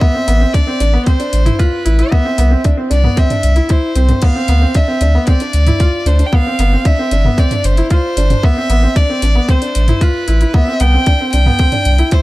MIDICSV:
0, 0, Header, 1, 5, 480
1, 0, Start_track
1, 0, Tempo, 526316
1, 11, Time_signature, 4, 2, 24, 8
1, 11146, End_track
2, 0, Start_track
2, 0, Title_t, "Violin"
2, 0, Program_c, 0, 40
2, 1, Note_on_c, 0, 76, 107
2, 487, Note_on_c, 0, 74, 104
2, 500, Note_off_c, 0, 76, 0
2, 965, Note_off_c, 0, 74, 0
2, 970, Note_on_c, 0, 72, 99
2, 1450, Note_on_c, 0, 71, 85
2, 1464, Note_off_c, 0, 72, 0
2, 1932, Note_on_c, 0, 76, 98
2, 1945, Note_off_c, 0, 71, 0
2, 2411, Note_off_c, 0, 76, 0
2, 2665, Note_on_c, 0, 74, 90
2, 2903, Note_on_c, 0, 76, 101
2, 2916, Note_off_c, 0, 74, 0
2, 3387, Note_on_c, 0, 72, 85
2, 3401, Note_off_c, 0, 76, 0
2, 3865, Note_on_c, 0, 77, 106
2, 3878, Note_off_c, 0, 72, 0
2, 4341, Note_on_c, 0, 76, 101
2, 4354, Note_off_c, 0, 77, 0
2, 4812, Note_off_c, 0, 76, 0
2, 4818, Note_on_c, 0, 74, 104
2, 5535, Note_on_c, 0, 72, 93
2, 5549, Note_off_c, 0, 74, 0
2, 5710, Note_on_c, 0, 79, 82
2, 5724, Note_off_c, 0, 72, 0
2, 5785, Note_on_c, 0, 77, 112
2, 5799, Note_off_c, 0, 79, 0
2, 6259, Note_on_c, 0, 76, 104
2, 6272, Note_off_c, 0, 77, 0
2, 6741, Note_on_c, 0, 74, 93
2, 6755, Note_off_c, 0, 76, 0
2, 6978, Note_on_c, 0, 72, 90
2, 6991, Note_off_c, 0, 74, 0
2, 7214, Note_off_c, 0, 72, 0
2, 7220, Note_on_c, 0, 72, 102
2, 7700, Note_on_c, 0, 76, 121
2, 7714, Note_off_c, 0, 72, 0
2, 8178, Note_on_c, 0, 74, 110
2, 8192, Note_off_c, 0, 76, 0
2, 8662, Note_on_c, 0, 72, 100
2, 8676, Note_off_c, 0, 74, 0
2, 9141, Note_on_c, 0, 71, 98
2, 9155, Note_off_c, 0, 72, 0
2, 9614, Note_on_c, 0, 76, 114
2, 9628, Note_off_c, 0, 71, 0
2, 9855, Note_on_c, 0, 79, 127
2, 9868, Note_off_c, 0, 76, 0
2, 10329, Note_off_c, 0, 79, 0
2, 10334, Note_on_c, 0, 79, 127
2, 11058, Note_on_c, 0, 72, 101
2, 11071, Note_off_c, 0, 79, 0
2, 11146, Note_off_c, 0, 72, 0
2, 11146, End_track
3, 0, Start_track
3, 0, Title_t, "Felt piano"
3, 0, Program_c, 1, 0
3, 11, Note_on_c, 1, 59, 93
3, 104, Note_off_c, 1, 59, 0
3, 133, Note_on_c, 1, 60, 71
3, 225, Note_off_c, 1, 60, 0
3, 251, Note_on_c, 1, 59, 84
3, 344, Note_off_c, 1, 59, 0
3, 371, Note_on_c, 1, 60, 71
3, 464, Note_off_c, 1, 60, 0
3, 494, Note_on_c, 1, 62, 88
3, 586, Note_off_c, 1, 62, 0
3, 612, Note_on_c, 1, 60, 77
3, 705, Note_off_c, 1, 60, 0
3, 732, Note_on_c, 1, 62, 84
3, 825, Note_off_c, 1, 62, 0
3, 853, Note_on_c, 1, 59, 80
3, 945, Note_off_c, 1, 59, 0
3, 969, Note_on_c, 1, 60, 90
3, 1063, Note_off_c, 1, 60, 0
3, 1092, Note_on_c, 1, 62, 83
3, 1278, Note_off_c, 1, 62, 0
3, 1327, Note_on_c, 1, 64, 81
3, 1421, Note_off_c, 1, 64, 0
3, 1448, Note_on_c, 1, 65, 91
3, 1635, Note_off_c, 1, 65, 0
3, 1689, Note_on_c, 1, 64, 77
3, 1783, Note_off_c, 1, 64, 0
3, 1812, Note_on_c, 1, 64, 76
3, 1905, Note_off_c, 1, 64, 0
3, 1928, Note_on_c, 1, 59, 99
3, 2022, Note_off_c, 1, 59, 0
3, 2051, Note_on_c, 1, 60, 75
3, 2144, Note_off_c, 1, 60, 0
3, 2172, Note_on_c, 1, 59, 86
3, 2264, Note_off_c, 1, 59, 0
3, 2288, Note_on_c, 1, 60, 80
3, 2382, Note_off_c, 1, 60, 0
3, 2413, Note_on_c, 1, 62, 88
3, 2505, Note_off_c, 1, 62, 0
3, 2529, Note_on_c, 1, 60, 73
3, 2623, Note_off_c, 1, 60, 0
3, 2646, Note_on_c, 1, 62, 84
3, 2741, Note_off_c, 1, 62, 0
3, 2773, Note_on_c, 1, 59, 74
3, 2865, Note_off_c, 1, 59, 0
3, 2887, Note_on_c, 1, 60, 91
3, 2981, Note_off_c, 1, 60, 0
3, 3011, Note_on_c, 1, 62, 74
3, 3197, Note_off_c, 1, 62, 0
3, 3246, Note_on_c, 1, 64, 79
3, 3341, Note_off_c, 1, 64, 0
3, 3366, Note_on_c, 1, 64, 85
3, 3554, Note_off_c, 1, 64, 0
3, 3609, Note_on_c, 1, 60, 74
3, 3703, Note_off_c, 1, 60, 0
3, 3730, Note_on_c, 1, 60, 73
3, 3823, Note_off_c, 1, 60, 0
3, 3853, Note_on_c, 1, 59, 86
3, 3946, Note_off_c, 1, 59, 0
3, 3972, Note_on_c, 1, 60, 74
3, 4065, Note_off_c, 1, 60, 0
3, 4094, Note_on_c, 1, 59, 84
3, 4186, Note_off_c, 1, 59, 0
3, 4211, Note_on_c, 1, 60, 75
3, 4304, Note_off_c, 1, 60, 0
3, 4337, Note_on_c, 1, 62, 90
3, 4428, Note_off_c, 1, 62, 0
3, 4450, Note_on_c, 1, 60, 80
3, 4544, Note_off_c, 1, 60, 0
3, 4574, Note_on_c, 1, 62, 79
3, 4666, Note_off_c, 1, 62, 0
3, 4696, Note_on_c, 1, 59, 82
3, 4787, Note_off_c, 1, 59, 0
3, 4814, Note_on_c, 1, 60, 89
3, 4906, Note_off_c, 1, 60, 0
3, 4935, Note_on_c, 1, 62, 77
3, 5120, Note_off_c, 1, 62, 0
3, 5174, Note_on_c, 1, 64, 83
3, 5266, Note_off_c, 1, 64, 0
3, 5289, Note_on_c, 1, 65, 84
3, 5476, Note_off_c, 1, 65, 0
3, 5531, Note_on_c, 1, 62, 79
3, 5624, Note_off_c, 1, 62, 0
3, 5650, Note_on_c, 1, 62, 77
3, 5744, Note_off_c, 1, 62, 0
3, 5771, Note_on_c, 1, 59, 96
3, 5864, Note_off_c, 1, 59, 0
3, 5898, Note_on_c, 1, 60, 73
3, 5988, Note_off_c, 1, 60, 0
3, 6017, Note_on_c, 1, 59, 84
3, 6108, Note_off_c, 1, 59, 0
3, 6134, Note_on_c, 1, 60, 73
3, 6226, Note_off_c, 1, 60, 0
3, 6253, Note_on_c, 1, 62, 86
3, 6345, Note_off_c, 1, 62, 0
3, 6375, Note_on_c, 1, 60, 83
3, 6466, Note_off_c, 1, 60, 0
3, 6495, Note_on_c, 1, 62, 84
3, 6587, Note_off_c, 1, 62, 0
3, 6615, Note_on_c, 1, 59, 78
3, 6707, Note_off_c, 1, 59, 0
3, 6739, Note_on_c, 1, 60, 86
3, 6829, Note_off_c, 1, 60, 0
3, 6859, Note_on_c, 1, 62, 79
3, 7042, Note_off_c, 1, 62, 0
3, 7093, Note_on_c, 1, 64, 82
3, 7186, Note_off_c, 1, 64, 0
3, 7212, Note_on_c, 1, 65, 91
3, 7398, Note_off_c, 1, 65, 0
3, 7455, Note_on_c, 1, 62, 79
3, 7547, Note_off_c, 1, 62, 0
3, 7576, Note_on_c, 1, 62, 77
3, 7667, Note_off_c, 1, 62, 0
3, 7695, Note_on_c, 1, 59, 93
3, 7787, Note_off_c, 1, 59, 0
3, 7816, Note_on_c, 1, 60, 76
3, 7907, Note_off_c, 1, 60, 0
3, 7933, Note_on_c, 1, 59, 87
3, 8026, Note_off_c, 1, 59, 0
3, 8052, Note_on_c, 1, 60, 76
3, 8145, Note_off_c, 1, 60, 0
3, 8171, Note_on_c, 1, 62, 89
3, 8264, Note_off_c, 1, 62, 0
3, 8295, Note_on_c, 1, 60, 77
3, 8387, Note_off_c, 1, 60, 0
3, 8414, Note_on_c, 1, 62, 75
3, 8506, Note_off_c, 1, 62, 0
3, 8531, Note_on_c, 1, 59, 79
3, 8624, Note_off_c, 1, 59, 0
3, 8652, Note_on_c, 1, 60, 97
3, 8745, Note_off_c, 1, 60, 0
3, 8773, Note_on_c, 1, 62, 81
3, 8958, Note_off_c, 1, 62, 0
3, 9017, Note_on_c, 1, 64, 77
3, 9108, Note_off_c, 1, 64, 0
3, 9137, Note_on_c, 1, 65, 92
3, 9321, Note_off_c, 1, 65, 0
3, 9373, Note_on_c, 1, 64, 73
3, 9465, Note_off_c, 1, 64, 0
3, 9496, Note_on_c, 1, 64, 76
3, 9587, Note_off_c, 1, 64, 0
3, 9619, Note_on_c, 1, 59, 92
3, 9709, Note_off_c, 1, 59, 0
3, 9739, Note_on_c, 1, 60, 68
3, 9829, Note_off_c, 1, 60, 0
3, 9855, Note_on_c, 1, 59, 85
3, 9946, Note_off_c, 1, 59, 0
3, 9978, Note_on_c, 1, 60, 77
3, 10068, Note_off_c, 1, 60, 0
3, 10103, Note_on_c, 1, 62, 91
3, 10191, Note_off_c, 1, 62, 0
3, 10220, Note_on_c, 1, 60, 76
3, 10310, Note_off_c, 1, 60, 0
3, 10338, Note_on_c, 1, 62, 80
3, 10428, Note_off_c, 1, 62, 0
3, 10456, Note_on_c, 1, 59, 76
3, 10547, Note_off_c, 1, 59, 0
3, 10572, Note_on_c, 1, 60, 86
3, 10665, Note_off_c, 1, 60, 0
3, 10691, Note_on_c, 1, 62, 80
3, 10877, Note_off_c, 1, 62, 0
3, 10933, Note_on_c, 1, 64, 84
3, 11025, Note_off_c, 1, 64, 0
3, 11048, Note_on_c, 1, 64, 88
3, 11146, Note_off_c, 1, 64, 0
3, 11146, End_track
4, 0, Start_track
4, 0, Title_t, "Sub bass"
4, 0, Program_c, 2, 38
4, 255, Note_on_c, 2, 33, 104
4, 412, Note_off_c, 2, 33, 0
4, 733, Note_on_c, 2, 33, 78
4, 891, Note_off_c, 2, 33, 0
4, 1214, Note_on_c, 2, 33, 82
4, 1371, Note_off_c, 2, 33, 0
4, 1695, Note_on_c, 2, 33, 89
4, 1852, Note_off_c, 2, 33, 0
4, 2174, Note_on_c, 2, 36, 104
4, 2331, Note_off_c, 2, 36, 0
4, 2653, Note_on_c, 2, 36, 78
4, 2811, Note_off_c, 2, 36, 0
4, 3133, Note_on_c, 2, 36, 84
4, 3291, Note_off_c, 2, 36, 0
4, 3607, Note_on_c, 2, 36, 94
4, 3768, Note_off_c, 2, 36, 0
4, 4089, Note_on_c, 2, 38, 100
4, 4249, Note_off_c, 2, 38, 0
4, 4569, Note_on_c, 2, 38, 78
4, 4729, Note_off_c, 2, 38, 0
4, 5051, Note_on_c, 2, 38, 84
4, 5210, Note_off_c, 2, 38, 0
4, 5525, Note_on_c, 2, 38, 85
4, 5687, Note_off_c, 2, 38, 0
4, 6010, Note_on_c, 2, 31, 107
4, 6169, Note_off_c, 2, 31, 0
4, 6489, Note_on_c, 2, 31, 82
4, 6649, Note_off_c, 2, 31, 0
4, 6970, Note_on_c, 2, 31, 85
4, 7129, Note_off_c, 2, 31, 0
4, 7450, Note_on_c, 2, 31, 82
4, 7609, Note_off_c, 2, 31, 0
4, 7931, Note_on_c, 2, 33, 104
4, 8090, Note_off_c, 2, 33, 0
4, 8413, Note_on_c, 2, 33, 82
4, 8571, Note_off_c, 2, 33, 0
4, 8898, Note_on_c, 2, 33, 79
4, 9054, Note_off_c, 2, 33, 0
4, 9378, Note_on_c, 2, 33, 88
4, 9533, Note_off_c, 2, 33, 0
4, 9854, Note_on_c, 2, 36, 105
4, 10011, Note_off_c, 2, 36, 0
4, 10337, Note_on_c, 2, 36, 80
4, 10493, Note_off_c, 2, 36, 0
4, 10813, Note_on_c, 2, 36, 78
4, 10971, Note_off_c, 2, 36, 0
4, 11146, End_track
5, 0, Start_track
5, 0, Title_t, "Drums"
5, 13, Note_on_c, 9, 36, 109
5, 104, Note_off_c, 9, 36, 0
5, 254, Note_on_c, 9, 42, 65
5, 345, Note_off_c, 9, 42, 0
5, 494, Note_on_c, 9, 36, 102
5, 496, Note_on_c, 9, 42, 43
5, 585, Note_off_c, 9, 36, 0
5, 587, Note_off_c, 9, 42, 0
5, 733, Note_on_c, 9, 42, 58
5, 824, Note_off_c, 9, 42, 0
5, 971, Note_on_c, 9, 42, 39
5, 974, Note_on_c, 9, 36, 101
5, 1062, Note_off_c, 9, 42, 0
5, 1066, Note_off_c, 9, 36, 0
5, 1092, Note_on_c, 9, 42, 41
5, 1183, Note_off_c, 9, 42, 0
5, 1211, Note_on_c, 9, 42, 66
5, 1302, Note_off_c, 9, 42, 0
5, 1333, Note_on_c, 9, 42, 31
5, 1333, Note_on_c, 9, 45, 65
5, 1424, Note_off_c, 9, 42, 0
5, 1424, Note_off_c, 9, 45, 0
5, 1454, Note_on_c, 9, 36, 100
5, 1454, Note_on_c, 9, 42, 44
5, 1545, Note_off_c, 9, 42, 0
5, 1546, Note_off_c, 9, 36, 0
5, 1693, Note_on_c, 9, 42, 60
5, 1784, Note_off_c, 9, 42, 0
5, 1813, Note_on_c, 9, 42, 28
5, 1904, Note_off_c, 9, 42, 0
5, 1935, Note_on_c, 9, 36, 102
5, 2027, Note_off_c, 9, 36, 0
5, 2171, Note_on_c, 9, 42, 65
5, 2262, Note_off_c, 9, 42, 0
5, 2411, Note_on_c, 9, 42, 40
5, 2416, Note_on_c, 9, 36, 108
5, 2502, Note_off_c, 9, 42, 0
5, 2507, Note_off_c, 9, 36, 0
5, 2652, Note_on_c, 9, 42, 64
5, 2743, Note_off_c, 9, 42, 0
5, 2771, Note_on_c, 9, 45, 66
5, 2862, Note_off_c, 9, 45, 0
5, 2892, Note_on_c, 9, 42, 41
5, 2895, Note_on_c, 9, 36, 107
5, 2983, Note_off_c, 9, 42, 0
5, 2986, Note_off_c, 9, 36, 0
5, 3012, Note_on_c, 9, 42, 42
5, 3012, Note_on_c, 9, 45, 68
5, 3103, Note_off_c, 9, 42, 0
5, 3103, Note_off_c, 9, 45, 0
5, 3130, Note_on_c, 9, 42, 63
5, 3221, Note_off_c, 9, 42, 0
5, 3246, Note_on_c, 9, 42, 32
5, 3337, Note_off_c, 9, 42, 0
5, 3366, Note_on_c, 9, 42, 44
5, 3375, Note_on_c, 9, 36, 103
5, 3458, Note_off_c, 9, 42, 0
5, 3466, Note_off_c, 9, 36, 0
5, 3607, Note_on_c, 9, 42, 60
5, 3698, Note_off_c, 9, 42, 0
5, 3727, Note_on_c, 9, 42, 29
5, 3727, Note_on_c, 9, 45, 57
5, 3818, Note_off_c, 9, 42, 0
5, 3818, Note_off_c, 9, 45, 0
5, 3845, Note_on_c, 9, 49, 74
5, 3853, Note_on_c, 9, 36, 118
5, 3936, Note_off_c, 9, 49, 0
5, 3944, Note_off_c, 9, 36, 0
5, 4087, Note_on_c, 9, 42, 64
5, 4178, Note_off_c, 9, 42, 0
5, 4327, Note_on_c, 9, 42, 43
5, 4332, Note_on_c, 9, 36, 113
5, 4418, Note_off_c, 9, 42, 0
5, 4423, Note_off_c, 9, 36, 0
5, 4567, Note_on_c, 9, 42, 67
5, 4658, Note_off_c, 9, 42, 0
5, 4804, Note_on_c, 9, 42, 39
5, 4811, Note_on_c, 9, 36, 108
5, 4896, Note_off_c, 9, 42, 0
5, 4902, Note_off_c, 9, 36, 0
5, 4926, Note_on_c, 9, 42, 43
5, 5017, Note_off_c, 9, 42, 0
5, 5047, Note_on_c, 9, 42, 71
5, 5138, Note_off_c, 9, 42, 0
5, 5167, Note_on_c, 9, 42, 33
5, 5167, Note_on_c, 9, 45, 71
5, 5259, Note_off_c, 9, 42, 0
5, 5259, Note_off_c, 9, 45, 0
5, 5289, Note_on_c, 9, 42, 45
5, 5290, Note_on_c, 9, 36, 110
5, 5380, Note_off_c, 9, 42, 0
5, 5381, Note_off_c, 9, 36, 0
5, 5529, Note_on_c, 9, 42, 63
5, 5620, Note_off_c, 9, 42, 0
5, 5647, Note_on_c, 9, 42, 31
5, 5738, Note_off_c, 9, 42, 0
5, 5770, Note_on_c, 9, 36, 118
5, 5861, Note_off_c, 9, 36, 0
5, 6009, Note_on_c, 9, 42, 64
5, 6100, Note_off_c, 9, 42, 0
5, 6248, Note_on_c, 9, 42, 44
5, 6250, Note_on_c, 9, 36, 116
5, 6339, Note_off_c, 9, 42, 0
5, 6341, Note_off_c, 9, 36, 0
5, 6488, Note_on_c, 9, 42, 64
5, 6579, Note_off_c, 9, 42, 0
5, 6609, Note_on_c, 9, 45, 64
5, 6700, Note_off_c, 9, 45, 0
5, 6729, Note_on_c, 9, 36, 107
5, 6731, Note_on_c, 9, 42, 41
5, 6820, Note_off_c, 9, 36, 0
5, 6822, Note_off_c, 9, 42, 0
5, 6849, Note_on_c, 9, 42, 43
5, 6849, Note_on_c, 9, 45, 71
5, 6940, Note_off_c, 9, 42, 0
5, 6940, Note_off_c, 9, 45, 0
5, 6969, Note_on_c, 9, 42, 68
5, 7060, Note_off_c, 9, 42, 0
5, 7090, Note_on_c, 9, 42, 32
5, 7181, Note_off_c, 9, 42, 0
5, 7209, Note_on_c, 9, 42, 48
5, 7210, Note_on_c, 9, 36, 112
5, 7300, Note_off_c, 9, 42, 0
5, 7302, Note_off_c, 9, 36, 0
5, 7451, Note_on_c, 9, 42, 70
5, 7542, Note_off_c, 9, 42, 0
5, 7572, Note_on_c, 9, 42, 30
5, 7572, Note_on_c, 9, 45, 67
5, 7663, Note_off_c, 9, 42, 0
5, 7663, Note_off_c, 9, 45, 0
5, 7692, Note_on_c, 9, 36, 122
5, 7783, Note_off_c, 9, 36, 0
5, 7931, Note_on_c, 9, 42, 69
5, 8023, Note_off_c, 9, 42, 0
5, 8171, Note_on_c, 9, 36, 114
5, 8172, Note_on_c, 9, 42, 44
5, 8263, Note_off_c, 9, 36, 0
5, 8263, Note_off_c, 9, 42, 0
5, 8411, Note_on_c, 9, 42, 68
5, 8502, Note_off_c, 9, 42, 0
5, 8651, Note_on_c, 9, 36, 108
5, 8652, Note_on_c, 9, 42, 46
5, 8743, Note_off_c, 9, 36, 0
5, 8743, Note_off_c, 9, 42, 0
5, 8771, Note_on_c, 9, 42, 48
5, 8862, Note_off_c, 9, 42, 0
5, 8892, Note_on_c, 9, 42, 74
5, 8983, Note_off_c, 9, 42, 0
5, 9009, Note_on_c, 9, 42, 34
5, 9009, Note_on_c, 9, 45, 66
5, 9101, Note_off_c, 9, 42, 0
5, 9101, Note_off_c, 9, 45, 0
5, 9131, Note_on_c, 9, 36, 106
5, 9131, Note_on_c, 9, 42, 46
5, 9222, Note_off_c, 9, 42, 0
5, 9223, Note_off_c, 9, 36, 0
5, 9372, Note_on_c, 9, 42, 66
5, 9464, Note_off_c, 9, 42, 0
5, 9491, Note_on_c, 9, 42, 32
5, 9583, Note_off_c, 9, 42, 0
5, 9612, Note_on_c, 9, 36, 119
5, 9704, Note_off_c, 9, 36, 0
5, 9849, Note_on_c, 9, 42, 68
5, 9940, Note_off_c, 9, 42, 0
5, 10089, Note_on_c, 9, 42, 45
5, 10093, Note_on_c, 9, 36, 113
5, 10180, Note_off_c, 9, 42, 0
5, 10184, Note_off_c, 9, 36, 0
5, 10331, Note_on_c, 9, 42, 68
5, 10423, Note_off_c, 9, 42, 0
5, 10450, Note_on_c, 9, 45, 62
5, 10541, Note_off_c, 9, 45, 0
5, 10567, Note_on_c, 9, 42, 46
5, 10574, Note_on_c, 9, 36, 104
5, 10659, Note_off_c, 9, 42, 0
5, 10665, Note_off_c, 9, 36, 0
5, 10688, Note_on_c, 9, 42, 46
5, 10688, Note_on_c, 9, 45, 67
5, 10780, Note_off_c, 9, 42, 0
5, 10780, Note_off_c, 9, 45, 0
5, 10809, Note_on_c, 9, 42, 68
5, 10900, Note_off_c, 9, 42, 0
5, 10929, Note_on_c, 9, 42, 30
5, 11021, Note_off_c, 9, 42, 0
5, 11048, Note_on_c, 9, 42, 45
5, 11053, Note_on_c, 9, 36, 111
5, 11139, Note_off_c, 9, 42, 0
5, 11144, Note_off_c, 9, 36, 0
5, 11146, End_track
0, 0, End_of_file